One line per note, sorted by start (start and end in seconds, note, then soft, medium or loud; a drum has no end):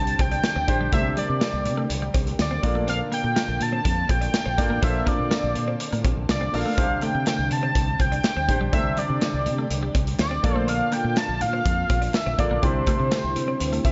0.00 0.13 C2 loud
0.00 0.93 C3 medium
0.00 2.60 D3 medium
0.00 2.60 G3 medium
0.00 0.91 C4 medium
0.00 0.68 D4 medium
0.00 0.68 G4 medium
0.00 2.60 G4 medium
0.00 0.69 C5 medium
0.00 0.22 A5 loud
0.07 closed hi-hat medium
0.19 0.38 C2 medium
0.19 0.27 C4 medium
0.19 0.93 G5 loud
0.19 kick loud
0.19 closed hi-hat medium
0.31 0.40 D4 medium
0.31 closed hi-hat medium
0.44 snare loud
0.44 closed hi-hat loud
0.44 tambourine medium
0.56 0.65 D2 medium
0.56 0.64 C4 medium
0.68 0.77 A1 medium
0.68 0.89 D4 medium
0.68 0.89 G4 medium
0.68 0.89 C5 medium
0.68 muted clean electric guitar stroke soft
0.68 kick medium
0.68 closed hi-hat medium
0.81 0.90 A#1 medium
0.81 0.88 G3 medium
0.92 1.11 C2 loud
0.92 1.62 C3 medium
0.92 1.01 A3 medium
0.92 4.55 A#3 medium
0.92 1.76 D4 medium
0.92 1.77 G4 medium
0.92 1.77 C5 medium
0.92 1.16 E5 loud
0.92 kick loud
0.92 closed hi-hat medium
1.17 1.25 G3 medium
1.17 2.11 D5 medium
1.17 closed hi-hat medium
1.29 1.38 C3 loud
1.29 muted clean electric guitar stroke soft
1.41 1.49 G3 medium
1.41 snare loud
1.41 closed hi-hat medium
1.41 tambourine medium
1.54 1.67 C2 loud
1.65 1.84 C3 loud
1.65 muted clean electric guitar stroke soft
1.65 closed hi-hat medium
1.77 1.86 A3 medium
1.90 2.08 C2 loud
1.90 muted clean electric guitar stroke medium
1.90 closed hi-hat loud
2.02 2.10 G3 medium
2.14 2.33 C2 medium
2.14 2.22 C4 medium
2.14 kick loud
2.14 closed hi-hat medium
2.27 closed hi-hat medium
2.39 2.57 D2 loud
2.39 2.85 D5 loud
2.39 snare loud
2.39 closed hi-hat medium
2.39 tambourine medium
2.51 2.59 C4 medium
2.63 3.00 A#1 loud
2.63 3.33 A#2 medium
2.63 10.40 D3 medium
2.63 3.47 A#3 medium
2.63 3.47 D4 medium
2.63 6.74 F4 loud
2.63 3.47 F4 medium
2.63 6.74 A4 medium
2.63 3.47 A4 medium
2.63 3.47 D5 medium
2.63 muted clean electric guitar stroke soft
2.63 kick loud
2.63 closed hi-hat medium
2.75 2.83 A3 medium
2.87 2.95 C4 medium
2.87 3.00 F5 loud
2.87 closed hi-hat medium
3.12 3.20 A#3 medium
3.12 3.64 G5 loud
3.12 closed hi-hat medium
3.24 3.33 A#2 loud
3.24 muted clean electric guitar stroke soft
3.36 3.44 A#3 medium
3.36 snare loud
3.36 closed hi-hat medium
3.36 tambourine medium
3.49 3.58 A#1 loud
3.60 3.79 A#2 loud
3.60 4.12 A5 loud
3.60 muted clean electric guitar stroke soft
3.60 closed hi-hat medium
3.73 3.81 C4 medium
3.85 4.03 F2 loud
3.85 muted clean electric guitar stroke soft
3.85 kick loud
3.85 closed hi-hat loud
4.09 4.28 A#1 medium
4.09 4.17 C4 medium
4.09 4.85 G5 loud
4.09 kick loud
4.09 closed hi-hat medium
4.21 4.29 D4 medium
4.21 closed hi-hat medium
4.34 snare loud
4.34 closed hi-hat medium
4.34 tambourine medium
4.46 4.55 A#1 medium
4.46 4.54 C4 medium
4.58 4.68 G1 medium
4.58 5.27 A#2 medium
4.58 4.79 A#3 medium
4.58 8.69 C4 medium
4.58 4.79 D4 medium
4.58 4.79 F4 medium
4.58 4.79 A4 medium
4.58 4.80 D5 medium
4.58 muted clean electric guitar stroke soft
4.58 kick medium
4.58 closed hi-hat medium
4.70 4.80 A1 medium
4.70 4.78 A#3 medium
4.82 5.01 A#1 loud
4.82 5.66 A#3 medium
4.82 4.90 C4 medium
4.82 5.67 D4 medium
4.82 5.67 F4 medium
4.82 5.67 A4 medium
4.82 5.67 C5 medium
4.82 5.10 E5 loud
4.82 kick loud
4.82 closed hi-hat medium
5.06 5.15 A#3 medium
5.06 6.05 D5 medium
5.06 kick loud
5.06 closed hi-hat medium
5.19 5.29 A#2 loud
5.19 muted clean electric guitar stroke soft
5.31 5.39 A#3 medium
5.31 snare loud
5.31 closed hi-hat medium
5.31 tambourine medium
5.44 5.53 A#1 loud
5.55 5.74 A#2 loud
5.55 muted clean electric guitar stroke soft
5.55 closed hi-hat medium
5.68 5.76 C4 medium
5.80 muted clean electric guitar stroke soft
5.80 closed hi-hat medium
5.93 6.02 A2 medium
5.93 6.01 A#3 medium
5.93 closed hi-hat medium
6.05 6.14 A#1 medium
6.05 6.13 C4 medium
6.05 kick loud
6.05 closed hi-hat medium
6.17 6.26 A#1 loud
6.29 6.48 C2 medium
6.29 6.56 D5 loud
6.29 snare loud
6.29 closed hi-hat medium
6.29 tambourine medium
6.41 6.49 C4 medium
6.53 6.63 A#1 medium
6.53 6.74 A#3 medium
6.53 6.74 D4 medium
6.53 6.74 F4 medium
6.53 6.75 A4 medium
6.53 6.75 D5 medium
6.53 7.05 F5 loud
6.53 muted clean electric guitar stroke soft
6.53 open hi-hat medium
6.66 6.74 A3 medium
6.77 6.96 C2 loud
6.77 7.47 C3 medium
6.77 10.40 G3 medium
6.77 6.86 C4 medium
6.77 7.61 D4 medium
6.77 10.40 G4 medium
6.77 7.62 G4 medium
6.77 7.62 C5 medium
6.77 kick loud
6.77 closed hi-hat medium
7.02 7.10 A3 medium
7.02 7.54 G5 loud
7.02 clap medium
7.02 closed hi-hat medium
7.15 7.24 C3 medium
7.15 muted clean electric guitar stroke soft
7.27 7.35 A3 medium
7.27 snare loud
7.27 clap medium
7.27 closed hi-hat medium
7.27 tambourine medium
7.39 7.48 C2 medium
7.51 7.69 C3 loud
7.51 8.03 A5 loud
7.51 muted clean electric guitar stroke soft
7.51 closed hi-hat medium
7.63 7.71 C4 medium
7.75 7.94 C2 loud
7.75 muted clean electric guitar stroke soft
7.75 kick loud
7.75 closed hi-hat loud
8.00 8.18 C2 medium
8.00 8.08 C4 medium
8.00 8.73 G5 loud
8.00 kick medium
8.00 closed hi-hat medium
8.12 8.20 D4 medium
8.12 closed hi-hat medium
8.24 snare loud
8.24 clap medium
8.24 closed hi-hat medium
8.24 tambourine medium
8.36 8.46 D2 medium
8.36 8.45 C4 medium
8.48 8.58 A1 medium
8.48 8.69 D4 medium
8.48 8.70 G4 medium
8.48 8.70 C5 medium
8.48 muted clean electric guitar stroke soft
8.48 kick medium
8.48 closed hi-hat medium
8.61 8.70 A#1 medium
8.61 8.69 G3 medium
8.73 8.91 C2 loud
8.73 9.42 C3 medium
8.73 8.81 A3 loud
8.73 9.57 D4 medium
8.73 10.42 D4 medium
8.73 9.57 G4 medium
8.73 9.57 C5 medium
8.73 9.00 E5 loud
8.73 kick loud
8.73 closed hi-hat medium
8.97 9.05 G3 medium
8.97 9.95 D5 medium
8.97 clap medium
8.97 closed hi-hat medium
9.10 9.19 C3 medium
9.10 muted clean electric guitar stroke soft
9.22 9.30 G3 medium
9.22 snare loud
9.22 clap medium
9.22 closed hi-hat medium
9.22 tambourine medium
9.34 9.48 C2 loud
9.46 9.65 C3 loud
9.46 muted clean electric guitar stroke soft
9.46 closed hi-hat medium
9.58 9.66 A3 medium
9.71 9.89 C2 loud
9.71 muted clean electric guitar stroke soft
9.71 closed hi-hat loud
9.83 9.91 G3 medium
9.95 10.13 C2 medium
9.95 10.03 C4 medium
9.95 kick loud
9.95 closed hi-hat medium
10.07 closed hi-hat medium
10.19 10.38 D2 loud
10.19 10.57 D5 loud
10.19 snare loud
10.19 clap medium
10.19 closed hi-hat medium
10.19 tambourine medium
10.31 10.39 C4 medium
10.43 10.80 A#1 loud
10.43 11.13 A#2 medium
10.43 13.92 D3 medium
10.43 11.27 A#3 medium
10.43 12.61 A#3 medium
10.43 11.28 D4 medium
10.43 12.61 F4 medium
10.43 11.28 F4 medium
10.43 12.61 A4 medium
10.43 11.28 A4 medium
10.43 11.28 D5 medium
10.43 muted clean electric guitar stroke soft
10.43 kick loud
10.43 closed hi-hat medium
10.56 10.64 A3 medium
10.56 10.70 C5 loud
10.68 10.76 C4 medium
10.68 10.95 F5 loud
10.68 closed hi-hat medium
10.92 11.00 A#3 medium
10.92 11.19 G5 loud
10.92 clap medium
10.92 closed hi-hat medium
11.05 11.14 A#2 medium
11.05 muted clean electric guitar stroke soft
11.17 11.25 A#3 medium
11.17 11.43 A5 loud
11.17 snare loud
11.17 clap medium
11.17 closed hi-hat medium
11.17 tambourine medium
11.29 11.43 A#1 loud
11.41 11.60 A#2 loud
11.41 12.16 F5 loud
11.41 muted clean electric guitar stroke soft
11.41 closed hi-hat medium
11.53 11.61 C4 medium
11.66 11.84 F2 loud
11.66 muted clean electric guitar stroke soft
11.66 kick loud
11.66 closed hi-hat medium
11.90 12.08 A#1 medium
11.90 11.98 C4 medium
11.90 kick loud
11.90 closed hi-hat medium
12.02 12.10 D4 medium
12.02 closed hi-hat medium
12.14 12.41 E5 loud
12.14 snare loud
12.14 clap medium
12.14 closed hi-hat medium
12.14 tambourine medium
12.26 12.36 A#1 medium
12.26 12.34 C4 medium
12.38 12.48 A1 medium
12.38 12.60 A#3 medium
12.38 12.60 D4 medium
12.38 12.60 F4 medium
12.38 12.60 A4 medium
12.38 12.60 D5 medium
12.38 12.65 D5 loud
12.38 muted clean electric guitar stroke soft
12.38 kick medium
12.38 closed hi-hat medium
12.51 12.60 A#1 medium
12.51 12.59 A#3 medium
12.62 12.81 C2 loud
12.62 13.32 C3 medium
12.62 13.92 G3 medium
12.62 13.47 C4 medium
12.62 13.92 C4 medium
12.62 12.71 C4 medium
12.62 13.47 D4 medium
12.62 13.47 E4 medium
12.62 13.92 E4 medium
12.62 13.47 G4 medium
12.62 13.92 C5 loud
12.62 13.47 D5 medium
12.62 kick loud
12.62 closed hi-hat medium
12.87 12.95 A3 medium
12.87 kick loud
12.87 clap medium
12.87 closed hi-hat medium
13.00 13.09 C3 loud
13.00 muted clean electric guitar stroke soft
13.11 13.20 A3 medium
13.11 snare loud
13.11 clap medium
13.11 closed hi-hat medium
13.11 tambourine medium
13.24 13.33 C2 medium
13.36 13.55 C3 loud
13.36 muted clean electric guitar stroke soft
13.36 closed hi-hat medium
13.48 13.56 C4 medium
13.60 13.79 D2 medium
13.60 muted clean electric guitar stroke soft
13.60 closed hi-hat loud
13.73 13.81 A3 medium
13.73 closed hi-hat medium
13.85 13.92 C2 medium
13.85 13.92 C4 medium
13.85 13.92 E5 medium
13.85 kick loud
13.85 closed hi-hat medium